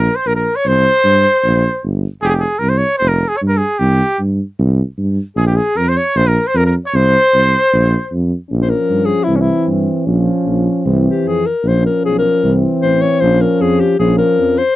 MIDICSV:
0, 0, Header, 1, 6, 480
1, 0, Start_track
1, 0, Tempo, 392413
1, 796, Time_signature, 2, 2, 24, 8
1, 18052, End_track
2, 0, Start_track
2, 0, Title_t, "Alto saxophone"
2, 0, Program_c, 0, 65
2, 0, Note_on_c, 0, 70, 76
2, 203, Note_on_c, 0, 72, 72
2, 221, Note_off_c, 0, 70, 0
2, 320, Note_on_c, 0, 70, 79
2, 338, Note_off_c, 0, 72, 0
2, 434, Note_off_c, 0, 70, 0
2, 441, Note_on_c, 0, 70, 80
2, 688, Note_on_c, 0, 73, 82
2, 706, Note_off_c, 0, 70, 0
2, 792, Note_on_c, 0, 72, 101
2, 810, Note_off_c, 0, 73, 0
2, 2236, Note_off_c, 0, 72, 0
2, 6557, Note_on_c, 0, 68, 82
2, 6675, Note_off_c, 0, 68, 0
2, 6699, Note_on_c, 0, 67, 62
2, 6816, Note_on_c, 0, 68, 75
2, 6835, Note_off_c, 0, 67, 0
2, 7057, Note_on_c, 0, 70, 101
2, 7076, Note_off_c, 0, 68, 0
2, 7193, Note_on_c, 0, 72, 77
2, 7211, Note_off_c, 0, 70, 0
2, 7300, Note_on_c, 0, 73, 77
2, 7318, Note_off_c, 0, 72, 0
2, 7539, Note_on_c, 0, 72, 83
2, 7557, Note_off_c, 0, 73, 0
2, 7671, Note_on_c, 0, 70, 74
2, 7690, Note_off_c, 0, 72, 0
2, 7908, Note_on_c, 0, 72, 79
2, 7926, Note_off_c, 0, 70, 0
2, 8006, Note_on_c, 0, 70, 86
2, 8025, Note_off_c, 0, 72, 0
2, 8129, Note_off_c, 0, 70, 0
2, 8134, Note_on_c, 0, 70, 65
2, 8241, Note_off_c, 0, 70, 0
2, 8385, Note_on_c, 0, 73, 74
2, 8504, Note_on_c, 0, 72, 97
2, 8522, Note_off_c, 0, 73, 0
2, 9935, Note_off_c, 0, 72, 0
2, 10541, Note_on_c, 0, 72, 61
2, 10635, Note_on_c, 0, 70, 80
2, 10653, Note_off_c, 0, 72, 0
2, 11072, Note_on_c, 0, 68, 80
2, 11091, Note_off_c, 0, 70, 0
2, 11302, Note_on_c, 0, 64, 75
2, 11320, Note_off_c, 0, 68, 0
2, 11443, Note_on_c, 0, 61, 54
2, 11461, Note_off_c, 0, 64, 0
2, 11506, Note_on_c, 0, 64, 73
2, 11524, Note_off_c, 0, 61, 0
2, 11828, Note_off_c, 0, 64, 0
2, 13545, Note_on_c, 0, 67, 69
2, 13796, Note_on_c, 0, 68, 83
2, 13814, Note_off_c, 0, 67, 0
2, 14018, Note_on_c, 0, 70, 71
2, 14037, Note_off_c, 0, 68, 0
2, 14285, Note_on_c, 0, 72, 74
2, 14303, Note_off_c, 0, 70, 0
2, 14496, Note_off_c, 0, 72, 0
2, 14503, Note_on_c, 0, 70, 74
2, 14718, Note_off_c, 0, 70, 0
2, 14739, Note_on_c, 0, 68, 82
2, 14881, Note_off_c, 0, 68, 0
2, 14901, Note_on_c, 0, 70, 85
2, 15339, Note_off_c, 0, 70, 0
2, 15682, Note_on_c, 0, 72, 93
2, 15922, Note_on_c, 0, 73, 86
2, 15940, Note_off_c, 0, 72, 0
2, 16151, Note_on_c, 0, 72, 93
2, 16169, Note_off_c, 0, 73, 0
2, 16402, Note_on_c, 0, 70, 78
2, 16420, Note_off_c, 0, 72, 0
2, 16652, Note_on_c, 0, 68, 94
2, 16671, Note_off_c, 0, 70, 0
2, 16879, Note_on_c, 0, 67, 84
2, 16898, Note_off_c, 0, 68, 0
2, 17109, Note_off_c, 0, 67, 0
2, 17116, Note_on_c, 0, 68, 86
2, 17339, Note_off_c, 0, 68, 0
2, 17344, Note_on_c, 0, 70, 97
2, 17832, Note_on_c, 0, 72, 99
2, 17851, Note_off_c, 0, 70, 0
2, 18052, Note_off_c, 0, 72, 0
2, 18052, End_track
3, 0, Start_track
3, 0, Title_t, "Trumpet"
3, 0, Program_c, 1, 56
3, 0, Note_on_c, 1, 70, 84
3, 186, Note_on_c, 1, 72, 88
3, 205, Note_off_c, 1, 70, 0
3, 327, Note_on_c, 1, 70, 95
3, 345, Note_off_c, 1, 72, 0
3, 428, Note_off_c, 1, 70, 0
3, 435, Note_on_c, 1, 70, 82
3, 681, Note_on_c, 1, 73, 90
3, 699, Note_off_c, 1, 70, 0
3, 830, Note_on_c, 1, 72, 107
3, 848, Note_off_c, 1, 73, 0
3, 2255, Note_off_c, 1, 72, 0
3, 2714, Note_on_c, 1, 68, 110
3, 2736, Note_on_c, 1, 67, 92
3, 2754, Note_off_c, 1, 68, 0
3, 2784, Note_on_c, 1, 68, 111
3, 2802, Note_off_c, 1, 67, 0
3, 2828, Note_on_c, 1, 67, 63
3, 2847, Note_off_c, 1, 68, 0
3, 2933, Note_on_c, 1, 68, 85
3, 2951, Note_off_c, 1, 67, 0
3, 3164, Note_on_c, 1, 70, 103
3, 3182, Note_off_c, 1, 68, 0
3, 3292, Note_on_c, 1, 72, 79
3, 3310, Note_off_c, 1, 70, 0
3, 3396, Note_on_c, 1, 73, 95
3, 3414, Note_off_c, 1, 72, 0
3, 3640, Note_off_c, 1, 73, 0
3, 3647, Note_on_c, 1, 72, 102
3, 3766, Note_on_c, 1, 70, 86
3, 3785, Note_off_c, 1, 72, 0
3, 4017, Note_on_c, 1, 68, 90
3, 4036, Note_off_c, 1, 70, 0
3, 4122, Note_on_c, 1, 73, 80
3, 4141, Note_off_c, 1, 68, 0
3, 4144, Note_off_c, 1, 73, 0
3, 4262, Note_on_c, 1, 70, 78
3, 4373, Note_on_c, 1, 68, 88
3, 4391, Note_off_c, 1, 70, 0
3, 4630, Note_on_c, 1, 67, 104
3, 4649, Note_off_c, 1, 68, 0
3, 5116, Note_off_c, 1, 67, 0
3, 6572, Note_on_c, 1, 68, 91
3, 6683, Note_off_c, 1, 68, 0
3, 6688, Note_on_c, 1, 67, 79
3, 6806, Note_on_c, 1, 68, 88
3, 6824, Note_off_c, 1, 67, 0
3, 7054, Note_on_c, 1, 70, 97
3, 7072, Note_off_c, 1, 68, 0
3, 7201, Note_on_c, 1, 72, 84
3, 7220, Note_off_c, 1, 70, 0
3, 7307, Note_on_c, 1, 73, 105
3, 7325, Note_off_c, 1, 72, 0
3, 7544, Note_on_c, 1, 72, 126
3, 7562, Note_off_c, 1, 73, 0
3, 7673, Note_on_c, 1, 70, 93
3, 7692, Note_off_c, 1, 72, 0
3, 7913, Note_on_c, 1, 72, 91
3, 7932, Note_off_c, 1, 70, 0
3, 8032, Note_on_c, 1, 70, 95
3, 8050, Note_off_c, 1, 72, 0
3, 8142, Note_off_c, 1, 70, 0
3, 8151, Note_on_c, 1, 70, 67
3, 8254, Note_off_c, 1, 70, 0
3, 8388, Note_on_c, 1, 73, 90
3, 8505, Note_on_c, 1, 72, 116
3, 8523, Note_off_c, 1, 73, 0
3, 9935, Note_off_c, 1, 72, 0
3, 18052, End_track
4, 0, Start_track
4, 0, Title_t, "French horn"
4, 0, Program_c, 2, 60
4, 10386, Note_on_c, 2, 61, 61
4, 11346, Note_on_c, 2, 60, 80
4, 11365, Note_off_c, 2, 61, 0
4, 12298, Note_on_c, 2, 61, 80
4, 12316, Note_off_c, 2, 60, 0
4, 13258, Note_on_c, 2, 60, 77
4, 13277, Note_off_c, 2, 61, 0
4, 14042, Note_off_c, 2, 60, 0
4, 14239, Note_on_c, 2, 61, 64
4, 15211, Note_on_c, 2, 60, 84
4, 15229, Note_off_c, 2, 61, 0
4, 16170, Note_on_c, 2, 61, 89
4, 16188, Note_off_c, 2, 60, 0
4, 17113, Note_off_c, 2, 61, 0
4, 17120, Note_on_c, 2, 61, 73
4, 17869, Note_off_c, 2, 61, 0
4, 18052, End_track
5, 0, Start_track
5, 0, Title_t, "Euphonium"
5, 0, Program_c, 3, 58
5, 10397, Note_on_c, 3, 53, 60
5, 11350, Note_on_c, 3, 52, 79
5, 11368, Note_off_c, 3, 53, 0
5, 12314, Note_off_c, 3, 52, 0
5, 12321, Note_on_c, 3, 53, 79
5, 13281, Note_on_c, 3, 52, 67
5, 13299, Note_off_c, 3, 53, 0
5, 14053, Note_off_c, 3, 52, 0
5, 14259, Note_on_c, 3, 53, 59
5, 15220, Note_on_c, 3, 52, 76
5, 15238, Note_off_c, 3, 53, 0
5, 16165, Note_on_c, 3, 53, 89
5, 16184, Note_off_c, 3, 52, 0
5, 17108, Note_off_c, 3, 53, 0
5, 17116, Note_on_c, 3, 53, 78
5, 17867, Note_off_c, 3, 53, 0
5, 18052, End_track
6, 0, Start_track
6, 0, Title_t, "Tuba"
6, 0, Program_c, 4, 58
6, 312, Note_on_c, 4, 34, 76
6, 577, Note_off_c, 4, 34, 0
6, 796, Note_on_c, 4, 36, 104
6, 1060, Note_off_c, 4, 36, 0
6, 1271, Note_on_c, 4, 43, 93
6, 1537, Note_off_c, 4, 43, 0
6, 1769, Note_on_c, 4, 34, 111
6, 2030, Note_off_c, 4, 34, 0
6, 2242, Note_on_c, 4, 31, 88
6, 2505, Note_off_c, 4, 31, 0
6, 2714, Note_on_c, 4, 29, 93
6, 2979, Note_off_c, 4, 29, 0
6, 3189, Note_on_c, 4, 36, 95
6, 3456, Note_off_c, 4, 36, 0
6, 3674, Note_on_c, 4, 29, 112
6, 3940, Note_off_c, 4, 29, 0
6, 4176, Note_on_c, 4, 43, 95
6, 4436, Note_off_c, 4, 43, 0
6, 4646, Note_on_c, 4, 36, 115
6, 4909, Note_off_c, 4, 36, 0
6, 5123, Note_on_c, 4, 43, 87
6, 5387, Note_off_c, 4, 43, 0
6, 5610, Note_on_c, 4, 36, 120
6, 5872, Note_off_c, 4, 36, 0
6, 6084, Note_on_c, 4, 43, 89
6, 6348, Note_off_c, 4, 43, 0
6, 6555, Note_on_c, 4, 34, 118
6, 6821, Note_off_c, 4, 34, 0
6, 7047, Note_on_c, 4, 41, 81
6, 7310, Note_off_c, 4, 41, 0
6, 7524, Note_on_c, 4, 34, 114
6, 7788, Note_off_c, 4, 34, 0
6, 8000, Note_on_c, 4, 41, 99
6, 8265, Note_off_c, 4, 41, 0
6, 8484, Note_on_c, 4, 36, 113
6, 8748, Note_off_c, 4, 36, 0
6, 8968, Note_on_c, 4, 36, 99
6, 9231, Note_off_c, 4, 36, 0
6, 9456, Note_on_c, 4, 34, 116
6, 9717, Note_off_c, 4, 34, 0
6, 9928, Note_on_c, 4, 41, 89
6, 10192, Note_off_c, 4, 41, 0
6, 10407, Note_on_c, 4, 34, 107
6, 10671, Note_off_c, 4, 34, 0
6, 10881, Note_on_c, 4, 43, 79
6, 11146, Note_off_c, 4, 43, 0
6, 11348, Note_on_c, 4, 36, 95
6, 11617, Note_off_c, 4, 36, 0
6, 11832, Note_on_c, 4, 43, 70
6, 12100, Note_off_c, 4, 43, 0
6, 12307, Note_on_c, 4, 34, 94
6, 12577, Note_off_c, 4, 34, 0
6, 12792, Note_on_c, 4, 34, 79
6, 13061, Note_off_c, 4, 34, 0
6, 13276, Note_on_c, 4, 36, 115
6, 13543, Note_off_c, 4, 36, 0
6, 13760, Note_on_c, 4, 41, 60
6, 14026, Note_off_c, 4, 41, 0
6, 14235, Note_on_c, 4, 34, 110
6, 14502, Note_off_c, 4, 34, 0
6, 14737, Note_on_c, 4, 35, 69
6, 14997, Note_off_c, 4, 35, 0
6, 15210, Note_on_c, 4, 36, 113
6, 15472, Note_off_c, 4, 36, 0
6, 15687, Note_on_c, 4, 33, 81
6, 15949, Note_off_c, 4, 33, 0
6, 16168, Note_on_c, 4, 34, 114
6, 16429, Note_off_c, 4, 34, 0
6, 16636, Note_on_c, 4, 41, 86
6, 16900, Note_off_c, 4, 41, 0
6, 17111, Note_on_c, 4, 34, 109
6, 17375, Note_off_c, 4, 34, 0
6, 17593, Note_on_c, 4, 41, 82
6, 17856, Note_off_c, 4, 41, 0
6, 18052, End_track
0, 0, End_of_file